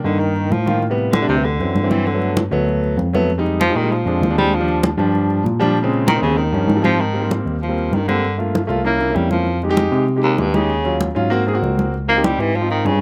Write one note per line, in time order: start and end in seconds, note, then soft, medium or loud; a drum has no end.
0.04 0.48 G2 medium
0.04 0.20 D3 medium
0.04 0.48 D#3 medium
0.04 0.48 A#3 medium
0.04 0.48 D#4 medium
0.04 high conga soft
0.19 0.53 D#3 medium
0.19 high conga soft
0.36 high conga soft
0.50 1.23 A2 medium
0.50 0.82 F3 medium
0.50 high conga medium
0.66 0.82 D#3 medium
0.66 0.82 A#3 medium
0.66 0.82 F4 medium
0.66 high conga medium
0.82 high conga soft
0.90 1.11 C3 medium
0.90 1.12 G3 medium
0.90 1.12 B3 loud
0.98 high conga soft
1.12 1.27 D3 medium
1.12 high conga loud
1.21 1.32 C3 medium
1.21 1.32 G3 medium
1.21 1.32 D4 loud
1.28 1.57 D2 medium
1.28 1.46 C3 medium
1.28 high conga soft
1.36 1.44 C3 medium
1.36 1.44 G3 medium
1.36 1.45 B3 medium
1.44 1.92 D3 medium
1.44 high conga soft
1.60 1.74 F#2 medium
1.60 1.76 E3 medium
1.60 1.76 F#3 medium
1.60 1.76 C4 medium
1.60 high conga soft
1.75 2.47 G2 medium
1.75 high conga medium
1.83 1.88 E3 medium
1.83 1.89 F#3 medium
1.83 1.89 C4 medium
1.90 2.07 E3 loud
1.90 2.06 E3 medium
1.90 2.06 F#3 medium
1.90 2.06 C4 loud
1.90 high conga medium
2.06 2.37 D3 medium
2.06 high conga soft
2.14 2.41 F#3 medium
2.14 2.41 A3 medium
2.14 2.41 B3 medium
2.22 high conga soft
2.37 high conga medium
2.51 2.95 D2 medium
2.51 2.95 F#3 medium
2.51 2.95 A3 medium
2.51 2.96 B3 loud
2.51 high conga soft
2.69 high conga soft
2.84 high conga soft
2.97 3.69 F2 medium
2.97 high conga medium
3.13 3.29 F#3 medium
3.13 3.30 A3 medium
3.13 3.30 B3 loud
3.13 high conga medium
3.30 high conga soft
3.38 3.59 G3 medium
3.38 3.59 G#3 medium
3.38 3.60 D#4 loud
3.46 high conga soft
3.60 3.77 F3 loud
3.60 high conga medium
3.69 3.79 G3 medium
3.69 3.80 G#3 medium
3.69 3.80 D#4 medium
3.75 4.04 A#2 medium
3.75 3.93 D#3 medium
3.75 high conga soft
3.82 3.91 G3 medium
3.82 3.91 G#3 medium
3.82 3.91 D#4 medium
3.92 4.37 F3 medium
3.92 high conga soft
4.05 4.20 F2 medium
4.05 4.22 G#3 medium
4.05 4.23 C4 medium
4.05 4.23 D4 medium
4.05 high conga soft
4.21 4.93 D#2 medium
4.21 high conga medium
4.29 4.35 G#3 medium
4.29 4.35 C4 medium
4.29 4.35 D4 medium
4.37 4.55 G3 loud
4.37 4.53 G#3 medium
4.37 4.53 C4 medium
4.37 4.54 D4 medium
4.37 high conga medium
4.54 4.84 F3 medium
4.54 high conga soft
4.59 4.87 F3 medium
4.59 4.87 G3 medium
4.59 4.88 D4 medium
4.68 high conga soft
4.83 high conga loud
4.97 5.41 G2 loud
4.97 5.42 F3 medium
4.97 5.42 G3 medium
4.97 5.42 D4 medium
4.97 high conga soft
5.15 high conga soft
5.30 high conga soft
5.44 6.17 A#2 medium
5.44 high conga medium
5.60 5.76 F3 loud
5.60 5.76 G3 loud
5.60 5.76 D4 loud
5.60 high conga medium
5.77 high conga soft
5.83 6.05 C#3 loud
5.83 6.05 G#3 medium
5.83 6.06 C4 loud
5.93 high conga soft
6.07 6.21 D#3 medium
6.07 high conga loud
6.15 6.26 C#3 medium
6.15 6.26 G#3 medium
6.15 6.26 C4 loud
6.21 6.51 D#2 loud
6.21 6.39 C#3 medium
6.21 high conga soft
6.30 6.38 C#3 medium
6.30 6.38 G#3 medium
6.30 6.38 C4 medium
6.37 6.84 D#3 medium
6.37 high conga soft
6.52 6.67 G2 medium
6.52 6.69 F3 medium
6.52 6.70 G3 medium
6.52 6.70 C#4 medium
6.52 high conga soft
6.68 7.40 G#2 loud
6.68 high conga medium
6.75 6.81 F3 medium
6.75 6.82 G3 medium
6.75 6.82 C4 medium
6.83 6.99 F3 medium
6.83 7.01 F3 loud
6.83 6.99 G3 medium
6.83 7.00 C4 loud
6.83 high conga medium
7.00 7.31 D#3 medium
7.00 high conga soft
7.13 7.19 G3 medium
7.13 7.20 A#3 medium
7.13 7.20 C4 medium
7.13 high conga soft
7.21 7.54 G3 medium
7.21 7.55 A#3 medium
7.21 7.55 C4 medium
7.31 high conga medium
7.45 7.88 D#2 medium
7.45 high conga soft
7.62 7.95 F3 medium
7.62 high conga soft
7.68 7.96 G3 medium
7.68 7.96 A#3 medium
7.68 7.96 C4 medium
7.78 high conga soft
7.92 8.63 G2 medium
7.92 8.07 D#3 medium
7.92 high conga medium
8.07 8.36 D3 medium
8.07 8.23 G3 medium
8.07 8.23 A#3 medium
8.07 8.23 C4 medium
8.07 high conga medium
8.24 high conga soft
8.38 8.60 A3 medium
8.38 8.60 A#3 medium
8.38 8.60 F4 medium
8.38 high conga soft
8.55 high conga medium
8.67 9.12 C2 medium
8.67 8.79 A3 medium
8.67 8.80 A#3 medium
8.67 8.80 F4 medium
8.67 high conga soft
8.85 8.96 A#3 medium
8.85 9.17 A#3 medium
8.85 8.96 C#4 medium
8.85 8.96 E4 medium
8.85 high conga soft
8.99 9.05 A#3 medium
8.99 9.06 C#4 medium
8.99 9.06 E4 medium
8.99 high conga soft
9.09 9.46 A#3 medium
9.09 9.47 C#4 medium
9.09 9.47 E4 medium
9.15 9.87 F2 medium
9.15 9.31 G3 medium
9.15 high conga medium
9.31 9.60 F3 medium
9.31 high conga medium
9.47 high conga soft
9.62 9.68 G#3 medium
9.62 9.68 D#4 medium
9.62 9.69 G4 medium
9.62 high conga soft
9.69 10.02 G#3 medium
9.69 10.02 D#4 medium
9.69 10.02 G4 loud
9.77 high conga medium
9.92 10.35 C3 loud
9.92 high conga soft
10.08 high conga soft
10.16 10.43 G#3 medium
10.16 10.43 D#4 medium
10.16 10.44 G4 medium
10.22 10.41 D#2 medium
10.22 high conga soft
10.38 11.10 D#2 medium
10.38 10.56 G2 medium
10.38 high conga medium
10.54 11.01 C#3 loud
10.54 10.70 G#3 medium
10.54 10.70 D#4 medium
10.54 10.70 G4 medium
10.54 high conga medium
10.70 high conga soft
10.84 11.06 F#3 medium
10.84 11.07 C#4 medium
10.84 11.07 F4 medium
10.84 high conga soft
11.01 high conga medium
11.15 11.59 G#2 medium
11.15 11.26 F#3 medium
11.15 11.26 C#4 medium
11.15 11.27 F4 loud
11.15 high conga soft
11.30 11.42 A#3 loud
11.30 11.42 C4 medium
11.30 11.42 F#4 loud
11.30 high conga soft
11.47 11.52 A#3 medium
11.47 11.52 C4 medium
11.47 11.53 G#4 medium
11.47 high conga soft
11.53 11.92 A#3 medium
11.53 11.92 C4 medium
11.53 11.93 F#4 loud
11.62 12.34 C#2 medium
11.62 high conga medium
11.79 high conga medium
11.94 high conga soft
12.08 12.26 A#3 loud
12.08 12.14 C4 medium
12.08 12.14 D#4 medium
12.08 12.14 F4 medium
12.08 high conga soft
12.16 12.49 C4 medium
12.16 12.49 D#4 medium
12.16 12.49 G4 medium
12.24 12.41 G3 medium
12.24 high conga loud
12.39 12.82 G#2 medium
12.39 12.57 E3 medium
12.39 high conga soft
12.55 12.70 F3 medium
12.55 high conga soft
12.61 12.89 C4 medium
12.61 12.89 D#4 medium
12.61 12.89 F4 medium
12.70 12.87 D#3 medium
12.70 high conga soft
12.85 13.02 G2 loud
12.85 13.01 C#3 medium
12.85 high conga medium